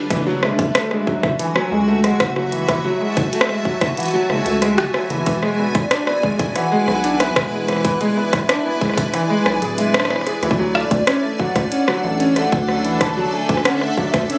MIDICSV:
0, 0, Header, 1, 6, 480
1, 0, Start_track
1, 0, Key_signature, 3, "minor"
1, 0, Tempo, 645161
1, 77, Time_signature, 4, 2, 24, 8
1, 10699, End_track
2, 0, Start_track
2, 0, Title_t, "Soft synth lead"
2, 0, Program_c, 0, 80
2, 318, Note_on_c, 0, 76, 105
2, 1008, Note_off_c, 0, 76, 0
2, 1037, Note_on_c, 0, 80, 115
2, 1488, Note_off_c, 0, 80, 0
2, 1517, Note_on_c, 0, 78, 107
2, 1852, Note_off_c, 0, 78, 0
2, 1996, Note_on_c, 0, 76, 104
2, 2447, Note_off_c, 0, 76, 0
2, 2476, Note_on_c, 0, 76, 97
2, 2957, Note_on_c, 0, 78, 101
2, 2968, Note_off_c, 0, 76, 0
2, 3196, Note_on_c, 0, 76, 93
2, 3207, Note_off_c, 0, 78, 0
2, 3677, Note_off_c, 0, 76, 0
2, 4159, Note_on_c, 0, 74, 102
2, 4878, Note_on_c, 0, 78, 121
2, 4890, Note_off_c, 0, 74, 0
2, 5358, Note_on_c, 0, 76, 97
2, 5369, Note_off_c, 0, 78, 0
2, 5718, Note_off_c, 0, 76, 0
2, 6078, Note_on_c, 0, 76, 100
2, 6800, Note_on_c, 0, 80, 123
2, 6811, Note_off_c, 0, 76, 0
2, 7274, Note_off_c, 0, 80, 0
2, 7279, Note_on_c, 0, 76, 85
2, 7613, Note_off_c, 0, 76, 0
2, 7998, Note_on_c, 0, 74, 88
2, 8238, Note_on_c, 0, 76, 94
2, 8250, Note_off_c, 0, 74, 0
2, 8478, Note_on_c, 0, 78, 103
2, 8489, Note_off_c, 0, 76, 0
2, 9194, Note_off_c, 0, 78, 0
2, 9198, Note_on_c, 0, 78, 108
2, 9679, Note_on_c, 0, 81, 119
2, 9690, Note_off_c, 0, 78, 0
2, 9914, Note_off_c, 0, 81, 0
2, 9918, Note_on_c, 0, 80, 108
2, 10158, Note_on_c, 0, 78, 103
2, 10169, Note_off_c, 0, 80, 0
2, 10397, Note_on_c, 0, 76, 97
2, 10409, Note_off_c, 0, 78, 0
2, 10699, Note_off_c, 0, 76, 0
2, 10699, End_track
3, 0, Start_track
3, 0, Title_t, "Ambient pad"
3, 0, Program_c, 1, 92
3, 0, Note_on_c, 1, 55, 82
3, 0, Note_on_c, 1, 62, 85
3, 0, Note_on_c, 1, 69, 70
3, 0, Note_on_c, 1, 71, 89
3, 78, Note_off_c, 1, 55, 0
3, 78, Note_off_c, 1, 62, 0
3, 78, Note_on_c, 1, 66, 92
3, 643, Note_on_c, 1, 76, 76
3, 688, Note_off_c, 1, 71, 0
3, 968, Note_off_c, 1, 69, 0
3, 1091, Note_on_c, 1, 80, 78
3, 1373, Note_on_c, 1, 81, 86
3, 3918, Note_off_c, 1, 81, 0
3, 3918, Note_on_c, 1, 64, 94
3, 4256, Note_on_c, 1, 71, 92
3, 5165, Note_on_c, 1, 74, 94
3, 5318, Note_off_c, 1, 76, 0
3, 5454, Note_off_c, 1, 66, 0
3, 7759, Note_on_c, 1, 62, 91
3, 7980, Note_on_c, 1, 69, 76
3, 8546, Note_off_c, 1, 71, 0
3, 8808, Note_on_c, 1, 76, 74
3, 8897, Note_off_c, 1, 64, 0
3, 9294, Note_off_c, 1, 80, 0
3, 10699, Note_off_c, 1, 62, 0
3, 10699, Note_off_c, 1, 69, 0
3, 10699, Note_off_c, 1, 74, 0
3, 10699, Note_off_c, 1, 76, 0
3, 10699, End_track
4, 0, Start_track
4, 0, Title_t, "Felt piano"
4, 0, Program_c, 2, 0
4, 78, Note_on_c, 2, 52, 81
4, 129, Note_off_c, 2, 52, 0
4, 198, Note_on_c, 2, 54, 103
4, 312, Note_off_c, 2, 54, 0
4, 317, Note_on_c, 2, 56, 77
4, 431, Note_off_c, 2, 56, 0
4, 557, Note_on_c, 2, 57, 102
4, 642, Note_off_c, 2, 57, 0
4, 678, Note_on_c, 2, 56, 75
4, 792, Note_off_c, 2, 56, 0
4, 797, Note_on_c, 2, 54, 79
4, 882, Note_off_c, 2, 54, 0
4, 1037, Note_on_c, 2, 52, 85
4, 1088, Note_off_c, 2, 52, 0
4, 1156, Note_on_c, 2, 54, 102
4, 1271, Note_off_c, 2, 54, 0
4, 1277, Note_on_c, 2, 56, 77
4, 1391, Note_off_c, 2, 56, 0
4, 1397, Note_on_c, 2, 57, 99
4, 1482, Note_off_c, 2, 57, 0
4, 1517, Note_on_c, 2, 56, 105
4, 1602, Note_off_c, 2, 56, 0
4, 1757, Note_on_c, 2, 54, 78
4, 1842, Note_off_c, 2, 54, 0
4, 1877, Note_on_c, 2, 52, 76
4, 1985, Note_off_c, 2, 52, 0
4, 1996, Note_on_c, 2, 52, 84
4, 2048, Note_off_c, 2, 52, 0
4, 2117, Note_on_c, 2, 54, 100
4, 2231, Note_off_c, 2, 54, 0
4, 2237, Note_on_c, 2, 56, 76
4, 2351, Note_off_c, 2, 56, 0
4, 2477, Note_on_c, 2, 57, 101
4, 2562, Note_off_c, 2, 57, 0
4, 2597, Note_on_c, 2, 56, 79
4, 2711, Note_off_c, 2, 56, 0
4, 2717, Note_on_c, 2, 54, 76
4, 2802, Note_off_c, 2, 54, 0
4, 2958, Note_on_c, 2, 52, 83
4, 3008, Note_off_c, 2, 52, 0
4, 3078, Note_on_c, 2, 54, 101
4, 3192, Note_off_c, 2, 54, 0
4, 3198, Note_on_c, 2, 56, 76
4, 3312, Note_off_c, 2, 56, 0
4, 3317, Note_on_c, 2, 57, 97
4, 3402, Note_off_c, 2, 57, 0
4, 3438, Note_on_c, 2, 56, 107
4, 3522, Note_off_c, 2, 56, 0
4, 3677, Note_on_c, 2, 54, 78
4, 3762, Note_off_c, 2, 54, 0
4, 3797, Note_on_c, 2, 52, 77
4, 3907, Note_off_c, 2, 52, 0
4, 3918, Note_on_c, 2, 52, 84
4, 3968, Note_off_c, 2, 52, 0
4, 4038, Note_on_c, 2, 56, 102
4, 4152, Note_off_c, 2, 56, 0
4, 4158, Note_on_c, 2, 59, 76
4, 4272, Note_off_c, 2, 59, 0
4, 4398, Note_on_c, 2, 62, 103
4, 4482, Note_off_c, 2, 62, 0
4, 4517, Note_on_c, 2, 59, 78
4, 4632, Note_off_c, 2, 59, 0
4, 4638, Note_on_c, 2, 56, 80
4, 4722, Note_off_c, 2, 56, 0
4, 4878, Note_on_c, 2, 52, 84
4, 4928, Note_off_c, 2, 52, 0
4, 4997, Note_on_c, 2, 56, 102
4, 5111, Note_off_c, 2, 56, 0
4, 5117, Note_on_c, 2, 59, 76
4, 5231, Note_off_c, 2, 59, 0
4, 5237, Note_on_c, 2, 62, 100
4, 5322, Note_off_c, 2, 62, 0
4, 5358, Note_on_c, 2, 59, 104
4, 5442, Note_off_c, 2, 59, 0
4, 5597, Note_on_c, 2, 56, 76
4, 5682, Note_off_c, 2, 56, 0
4, 5717, Note_on_c, 2, 52, 79
4, 5826, Note_off_c, 2, 52, 0
4, 5837, Note_on_c, 2, 52, 85
4, 5888, Note_off_c, 2, 52, 0
4, 5958, Note_on_c, 2, 56, 101
4, 6072, Note_off_c, 2, 56, 0
4, 6078, Note_on_c, 2, 59, 75
4, 6192, Note_off_c, 2, 59, 0
4, 6318, Note_on_c, 2, 62, 100
4, 6402, Note_off_c, 2, 62, 0
4, 6438, Note_on_c, 2, 59, 77
4, 6552, Note_off_c, 2, 59, 0
4, 6558, Note_on_c, 2, 56, 76
4, 6642, Note_off_c, 2, 56, 0
4, 6798, Note_on_c, 2, 52, 86
4, 6848, Note_off_c, 2, 52, 0
4, 6917, Note_on_c, 2, 56, 100
4, 7031, Note_off_c, 2, 56, 0
4, 7037, Note_on_c, 2, 59, 78
4, 7122, Note_off_c, 2, 59, 0
4, 7158, Note_on_c, 2, 68, 77
4, 7242, Note_off_c, 2, 68, 0
4, 7277, Note_on_c, 2, 56, 101
4, 7362, Note_off_c, 2, 56, 0
4, 7398, Note_on_c, 2, 62, 73
4, 7482, Note_off_c, 2, 62, 0
4, 7518, Note_on_c, 2, 59, 77
4, 7568, Note_off_c, 2, 59, 0
4, 7638, Note_on_c, 2, 68, 79
4, 7752, Note_off_c, 2, 68, 0
4, 7759, Note_on_c, 2, 52, 83
4, 7809, Note_off_c, 2, 52, 0
4, 7878, Note_on_c, 2, 54, 100
4, 7992, Note_off_c, 2, 54, 0
4, 7999, Note_on_c, 2, 57, 77
4, 8112, Note_off_c, 2, 57, 0
4, 8238, Note_on_c, 2, 61, 102
4, 8322, Note_off_c, 2, 61, 0
4, 8359, Note_on_c, 2, 57, 78
4, 8472, Note_off_c, 2, 57, 0
4, 8478, Note_on_c, 2, 54, 79
4, 8562, Note_off_c, 2, 54, 0
4, 8718, Note_on_c, 2, 61, 85
4, 8802, Note_off_c, 2, 61, 0
4, 8839, Note_on_c, 2, 54, 104
4, 8952, Note_off_c, 2, 54, 0
4, 8959, Note_on_c, 2, 57, 76
4, 9072, Note_off_c, 2, 57, 0
4, 9078, Note_on_c, 2, 61, 102
4, 9162, Note_off_c, 2, 61, 0
4, 9198, Note_on_c, 2, 57, 102
4, 9282, Note_off_c, 2, 57, 0
4, 9438, Note_on_c, 2, 54, 80
4, 9522, Note_off_c, 2, 54, 0
4, 9558, Note_on_c, 2, 52, 78
4, 9666, Note_off_c, 2, 52, 0
4, 9677, Note_on_c, 2, 52, 83
4, 9728, Note_off_c, 2, 52, 0
4, 9798, Note_on_c, 2, 54, 101
4, 9912, Note_off_c, 2, 54, 0
4, 9918, Note_on_c, 2, 57, 79
4, 10032, Note_off_c, 2, 57, 0
4, 10157, Note_on_c, 2, 61, 104
4, 10242, Note_off_c, 2, 61, 0
4, 10277, Note_on_c, 2, 57, 79
4, 10391, Note_off_c, 2, 57, 0
4, 10397, Note_on_c, 2, 54, 79
4, 10482, Note_off_c, 2, 54, 0
4, 10637, Note_on_c, 2, 61, 84
4, 10699, Note_off_c, 2, 61, 0
4, 10699, End_track
5, 0, Start_track
5, 0, Title_t, "Acid bass"
5, 0, Program_c, 3, 38
5, 78, Note_on_c, 3, 30, 100
5, 394, Note_off_c, 3, 30, 0
5, 438, Note_on_c, 3, 30, 92
5, 530, Note_off_c, 3, 30, 0
5, 918, Note_on_c, 3, 30, 82
5, 1011, Note_off_c, 3, 30, 0
5, 1277, Note_on_c, 3, 37, 90
5, 1594, Note_off_c, 3, 37, 0
5, 1638, Note_on_c, 3, 30, 80
5, 2194, Note_off_c, 3, 30, 0
5, 2357, Note_on_c, 3, 30, 92
5, 2450, Note_off_c, 3, 30, 0
5, 2837, Note_on_c, 3, 30, 85
5, 2930, Note_off_c, 3, 30, 0
5, 3197, Note_on_c, 3, 30, 86
5, 3290, Note_off_c, 3, 30, 0
5, 3318, Note_on_c, 3, 37, 102
5, 3558, Note_on_c, 3, 30, 79
5, 3569, Note_off_c, 3, 37, 0
5, 3651, Note_off_c, 3, 30, 0
5, 3797, Note_on_c, 3, 30, 101
5, 3890, Note_off_c, 3, 30, 0
5, 3917, Note_on_c, 3, 28, 98
5, 4234, Note_off_c, 3, 28, 0
5, 4278, Note_on_c, 3, 28, 90
5, 4370, Note_off_c, 3, 28, 0
5, 4757, Note_on_c, 3, 28, 83
5, 4850, Note_off_c, 3, 28, 0
5, 5117, Note_on_c, 3, 35, 93
5, 5434, Note_off_c, 3, 35, 0
5, 5478, Note_on_c, 3, 28, 81
5, 6034, Note_off_c, 3, 28, 0
5, 6198, Note_on_c, 3, 28, 91
5, 6291, Note_off_c, 3, 28, 0
5, 6678, Note_on_c, 3, 28, 84
5, 6770, Note_off_c, 3, 28, 0
5, 7037, Note_on_c, 3, 35, 102
5, 7130, Note_off_c, 3, 35, 0
5, 7158, Note_on_c, 3, 26, 89
5, 7517, Note_on_c, 3, 28, 97
5, 7528, Note_off_c, 3, 26, 0
5, 7610, Note_off_c, 3, 28, 0
5, 7758, Note_on_c, 3, 38, 102
5, 8074, Note_off_c, 3, 38, 0
5, 8118, Note_on_c, 3, 38, 88
5, 8210, Note_off_c, 3, 38, 0
5, 8598, Note_on_c, 3, 38, 85
5, 8691, Note_off_c, 3, 38, 0
5, 8957, Note_on_c, 3, 33, 90
5, 9274, Note_off_c, 3, 33, 0
5, 9318, Note_on_c, 3, 38, 79
5, 9874, Note_off_c, 3, 38, 0
5, 10038, Note_on_c, 3, 38, 88
5, 10131, Note_off_c, 3, 38, 0
5, 10517, Note_on_c, 3, 38, 87
5, 10610, Note_off_c, 3, 38, 0
5, 10699, End_track
6, 0, Start_track
6, 0, Title_t, "Drums"
6, 78, Note_on_c, 9, 36, 112
6, 78, Note_on_c, 9, 37, 54
6, 78, Note_on_c, 9, 42, 67
6, 152, Note_off_c, 9, 36, 0
6, 153, Note_off_c, 9, 37, 0
6, 153, Note_off_c, 9, 42, 0
6, 318, Note_on_c, 9, 37, 86
6, 392, Note_off_c, 9, 37, 0
6, 438, Note_on_c, 9, 36, 124
6, 438, Note_on_c, 9, 42, 53
6, 512, Note_off_c, 9, 36, 0
6, 512, Note_off_c, 9, 42, 0
6, 558, Note_on_c, 9, 37, 120
6, 558, Note_on_c, 9, 42, 68
6, 632, Note_off_c, 9, 37, 0
6, 632, Note_off_c, 9, 42, 0
6, 678, Note_on_c, 9, 37, 54
6, 752, Note_off_c, 9, 37, 0
6, 798, Note_on_c, 9, 36, 87
6, 872, Note_off_c, 9, 36, 0
6, 918, Note_on_c, 9, 36, 109
6, 918, Note_on_c, 9, 37, 57
6, 992, Note_off_c, 9, 36, 0
6, 992, Note_off_c, 9, 37, 0
6, 1038, Note_on_c, 9, 42, 67
6, 1112, Note_off_c, 9, 42, 0
6, 1158, Note_on_c, 9, 37, 83
6, 1232, Note_off_c, 9, 37, 0
6, 1518, Note_on_c, 9, 37, 58
6, 1518, Note_on_c, 9, 42, 71
6, 1592, Note_off_c, 9, 37, 0
6, 1592, Note_off_c, 9, 42, 0
6, 1638, Note_on_c, 9, 36, 123
6, 1638, Note_on_c, 9, 37, 116
6, 1638, Note_on_c, 9, 42, 39
6, 1712, Note_off_c, 9, 36, 0
6, 1712, Note_off_c, 9, 37, 0
6, 1712, Note_off_c, 9, 42, 0
6, 1758, Note_on_c, 9, 37, 57
6, 1832, Note_off_c, 9, 37, 0
6, 1877, Note_on_c, 9, 42, 57
6, 1952, Note_off_c, 9, 42, 0
6, 1997, Note_on_c, 9, 36, 109
6, 1998, Note_on_c, 9, 37, 79
6, 1998, Note_on_c, 9, 42, 70
6, 2072, Note_off_c, 9, 36, 0
6, 2072, Note_off_c, 9, 37, 0
6, 2072, Note_off_c, 9, 42, 0
6, 2357, Note_on_c, 9, 37, 51
6, 2357, Note_on_c, 9, 42, 54
6, 2358, Note_on_c, 9, 36, 127
6, 2432, Note_off_c, 9, 36, 0
6, 2432, Note_off_c, 9, 37, 0
6, 2432, Note_off_c, 9, 42, 0
6, 2477, Note_on_c, 9, 42, 70
6, 2537, Note_on_c, 9, 37, 127
6, 2551, Note_off_c, 9, 42, 0
6, 2597, Note_off_c, 9, 37, 0
6, 2597, Note_on_c, 9, 37, 54
6, 2672, Note_off_c, 9, 37, 0
6, 2718, Note_on_c, 9, 36, 89
6, 2792, Note_off_c, 9, 36, 0
6, 2837, Note_on_c, 9, 36, 110
6, 2837, Note_on_c, 9, 37, 80
6, 2837, Note_on_c, 9, 42, 57
6, 2911, Note_off_c, 9, 37, 0
6, 2911, Note_off_c, 9, 42, 0
6, 2912, Note_off_c, 9, 36, 0
6, 2957, Note_on_c, 9, 42, 66
6, 2977, Note_off_c, 9, 42, 0
6, 2977, Note_on_c, 9, 42, 53
6, 2998, Note_off_c, 9, 42, 0
6, 2998, Note_on_c, 9, 42, 45
6, 3018, Note_off_c, 9, 42, 0
6, 3018, Note_on_c, 9, 42, 37
6, 3038, Note_off_c, 9, 42, 0
6, 3038, Note_on_c, 9, 42, 30
6, 3057, Note_off_c, 9, 42, 0
6, 3057, Note_on_c, 9, 42, 25
6, 3132, Note_off_c, 9, 42, 0
6, 3197, Note_on_c, 9, 37, 54
6, 3272, Note_off_c, 9, 37, 0
6, 3317, Note_on_c, 9, 42, 54
6, 3391, Note_off_c, 9, 42, 0
6, 3437, Note_on_c, 9, 37, 55
6, 3437, Note_on_c, 9, 42, 72
6, 3511, Note_off_c, 9, 37, 0
6, 3511, Note_off_c, 9, 42, 0
6, 3557, Note_on_c, 9, 37, 126
6, 3557, Note_on_c, 9, 42, 38
6, 3631, Note_off_c, 9, 37, 0
6, 3631, Note_off_c, 9, 42, 0
6, 3676, Note_on_c, 9, 37, 82
6, 3751, Note_off_c, 9, 37, 0
6, 3797, Note_on_c, 9, 42, 55
6, 3871, Note_off_c, 9, 42, 0
6, 3916, Note_on_c, 9, 42, 67
6, 3918, Note_on_c, 9, 36, 116
6, 3991, Note_off_c, 9, 42, 0
6, 3992, Note_off_c, 9, 36, 0
6, 4037, Note_on_c, 9, 37, 55
6, 4111, Note_off_c, 9, 37, 0
6, 4277, Note_on_c, 9, 37, 49
6, 4277, Note_on_c, 9, 42, 54
6, 4278, Note_on_c, 9, 36, 123
6, 4351, Note_off_c, 9, 37, 0
6, 4351, Note_off_c, 9, 42, 0
6, 4352, Note_off_c, 9, 36, 0
6, 4397, Note_on_c, 9, 37, 127
6, 4397, Note_on_c, 9, 42, 71
6, 4471, Note_off_c, 9, 37, 0
6, 4471, Note_off_c, 9, 42, 0
6, 4517, Note_on_c, 9, 37, 74
6, 4592, Note_off_c, 9, 37, 0
6, 4638, Note_on_c, 9, 36, 87
6, 4712, Note_off_c, 9, 36, 0
6, 4757, Note_on_c, 9, 42, 56
6, 4758, Note_on_c, 9, 36, 113
6, 4832, Note_off_c, 9, 36, 0
6, 4832, Note_off_c, 9, 42, 0
6, 4878, Note_on_c, 9, 37, 52
6, 4878, Note_on_c, 9, 42, 68
6, 4952, Note_off_c, 9, 37, 0
6, 4952, Note_off_c, 9, 42, 0
6, 5117, Note_on_c, 9, 37, 51
6, 5192, Note_off_c, 9, 37, 0
6, 5237, Note_on_c, 9, 42, 56
6, 5312, Note_off_c, 9, 42, 0
6, 5358, Note_on_c, 9, 37, 82
6, 5358, Note_on_c, 9, 42, 73
6, 5432, Note_off_c, 9, 37, 0
6, 5432, Note_off_c, 9, 42, 0
6, 5478, Note_on_c, 9, 36, 127
6, 5478, Note_on_c, 9, 37, 127
6, 5478, Note_on_c, 9, 42, 39
6, 5552, Note_off_c, 9, 36, 0
6, 5552, Note_off_c, 9, 37, 0
6, 5552, Note_off_c, 9, 42, 0
6, 5717, Note_on_c, 9, 37, 47
6, 5717, Note_on_c, 9, 42, 52
6, 5747, Note_off_c, 9, 37, 0
6, 5747, Note_on_c, 9, 37, 41
6, 5778, Note_off_c, 9, 37, 0
6, 5778, Note_on_c, 9, 37, 33
6, 5792, Note_off_c, 9, 42, 0
6, 5808, Note_off_c, 9, 37, 0
6, 5808, Note_on_c, 9, 37, 27
6, 5838, Note_on_c, 9, 36, 115
6, 5838, Note_on_c, 9, 42, 64
6, 5882, Note_off_c, 9, 37, 0
6, 5912, Note_off_c, 9, 36, 0
6, 5912, Note_off_c, 9, 42, 0
6, 5957, Note_on_c, 9, 42, 37
6, 6032, Note_off_c, 9, 42, 0
6, 6197, Note_on_c, 9, 37, 73
6, 6197, Note_on_c, 9, 42, 50
6, 6198, Note_on_c, 9, 36, 123
6, 6272, Note_off_c, 9, 36, 0
6, 6272, Note_off_c, 9, 37, 0
6, 6272, Note_off_c, 9, 42, 0
6, 6317, Note_on_c, 9, 37, 123
6, 6317, Note_on_c, 9, 42, 66
6, 6392, Note_off_c, 9, 37, 0
6, 6392, Note_off_c, 9, 42, 0
6, 6558, Note_on_c, 9, 36, 91
6, 6558, Note_on_c, 9, 37, 23
6, 6558, Note_on_c, 9, 42, 37
6, 6588, Note_off_c, 9, 37, 0
6, 6588, Note_on_c, 9, 37, 28
6, 6618, Note_off_c, 9, 37, 0
6, 6618, Note_on_c, 9, 37, 35
6, 6632, Note_off_c, 9, 36, 0
6, 6632, Note_off_c, 9, 42, 0
6, 6647, Note_off_c, 9, 37, 0
6, 6647, Note_on_c, 9, 37, 41
6, 6677, Note_on_c, 9, 36, 114
6, 6678, Note_on_c, 9, 42, 54
6, 6722, Note_off_c, 9, 37, 0
6, 6752, Note_off_c, 9, 36, 0
6, 6752, Note_off_c, 9, 42, 0
6, 6797, Note_on_c, 9, 37, 50
6, 6797, Note_on_c, 9, 42, 64
6, 6872, Note_off_c, 9, 37, 0
6, 6872, Note_off_c, 9, 42, 0
6, 7037, Note_on_c, 9, 37, 76
6, 7112, Note_off_c, 9, 37, 0
6, 7158, Note_on_c, 9, 42, 51
6, 7232, Note_off_c, 9, 42, 0
6, 7277, Note_on_c, 9, 42, 70
6, 7352, Note_off_c, 9, 42, 0
6, 7398, Note_on_c, 9, 37, 119
6, 7398, Note_on_c, 9, 42, 37
6, 7437, Note_off_c, 9, 37, 0
6, 7437, Note_on_c, 9, 37, 93
6, 7472, Note_off_c, 9, 42, 0
6, 7478, Note_off_c, 9, 37, 0
6, 7478, Note_on_c, 9, 37, 79
6, 7518, Note_off_c, 9, 37, 0
6, 7518, Note_on_c, 9, 37, 66
6, 7558, Note_off_c, 9, 37, 0
6, 7558, Note_on_c, 9, 37, 54
6, 7598, Note_off_c, 9, 37, 0
6, 7598, Note_on_c, 9, 37, 44
6, 7638, Note_off_c, 9, 37, 0
6, 7638, Note_on_c, 9, 37, 50
6, 7638, Note_on_c, 9, 42, 52
6, 7712, Note_off_c, 9, 37, 0
6, 7712, Note_off_c, 9, 42, 0
6, 7758, Note_on_c, 9, 37, 51
6, 7758, Note_on_c, 9, 42, 62
6, 7818, Note_on_c, 9, 36, 113
6, 7832, Note_off_c, 9, 37, 0
6, 7832, Note_off_c, 9, 42, 0
6, 7892, Note_off_c, 9, 36, 0
6, 7998, Note_on_c, 9, 37, 77
6, 8072, Note_off_c, 9, 37, 0
6, 8118, Note_on_c, 9, 36, 118
6, 8118, Note_on_c, 9, 42, 50
6, 8192, Note_off_c, 9, 36, 0
6, 8192, Note_off_c, 9, 42, 0
6, 8238, Note_on_c, 9, 37, 120
6, 8238, Note_on_c, 9, 42, 67
6, 8312, Note_off_c, 9, 37, 0
6, 8312, Note_off_c, 9, 42, 0
6, 8478, Note_on_c, 9, 36, 88
6, 8552, Note_off_c, 9, 36, 0
6, 8598, Note_on_c, 9, 36, 106
6, 8598, Note_on_c, 9, 37, 53
6, 8598, Note_on_c, 9, 42, 53
6, 8672, Note_off_c, 9, 36, 0
6, 8672, Note_off_c, 9, 37, 0
6, 8672, Note_off_c, 9, 42, 0
6, 8718, Note_on_c, 9, 42, 64
6, 8792, Note_off_c, 9, 42, 0
6, 8837, Note_on_c, 9, 37, 77
6, 8912, Note_off_c, 9, 37, 0
6, 9078, Note_on_c, 9, 42, 50
6, 9152, Note_off_c, 9, 42, 0
6, 9197, Note_on_c, 9, 37, 53
6, 9197, Note_on_c, 9, 42, 66
6, 9272, Note_off_c, 9, 37, 0
6, 9272, Note_off_c, 9, 42, 0
6, 9317, Note_on_c, 9, 42, 36
6, 9318, Note_on_c, 9, 36, 123
6, 9392, Note_off_c, 9, 36, 0
6, 9392, Note_off_c, 9, 42, 0
6, 9438, Note_on_c, 9, 37, 50
6, 9512, Note_off_c, 9, 37, 0
6, 9558, Note_on_c, 9, 42, 51
6, 9632, Note_off_c, 9, 42, 0
6, 9678, Note_on_c, 9, 36, 107
6, 9678, Note_on_c, 9, 37, 79
6, 9678, Note_on_c, 9, 42, 63
6, 9752, Note_off_c, 9, 36, 0
6, 9752, Note_off_c, 9, 37, 0
6, 9752, Note_off_c, 9, 42, 0
6, 10038, Note_on_c, 9, 36, 118
6, 10038, Note_on_c, 9, 42, 50
6, 10098, Note_on_c, 9, 37, 52
6, 10112, Note_off_c, 9, 36, 0
6, 10112, Note_off_c, 9, 42, 0
6, 10158, Note_off_c, 9, 37, 0
6, 10158, Note_on_c, 9, 37, 116
6, 10158, Note_on_c, 9, 42, 64
6, 10232, Note_off_c, 9, 37, 0
6, 10232, Note_off_c, 9, 42, 0
6, 10277, Note_on_c, 9, 37, 51
6, 10352, Note_off_c, 9, 37, 0
6, 10398, Note_on_c, 9, 36, 83
6, 10472, Note_off_c, 9, 36, 0
6, 10517, Note_on_c, 9, 36, 104
6, 10518, Note_on_c, 9, 37, 79
6, 10518, Note_on_c, 9, 42, 51
6, 10592, Note_off_c, 9, 36, 0
6, 10592, Note_off_c, 9, 37, 0
6, 10592, Note_off_c, 9, 42, 0
6, 10637, Note_on_c, 9, 42, 65
6, 10699, Note_off_c, 9, 42, 0
6, 10699, End_track
0, 0, End_of_file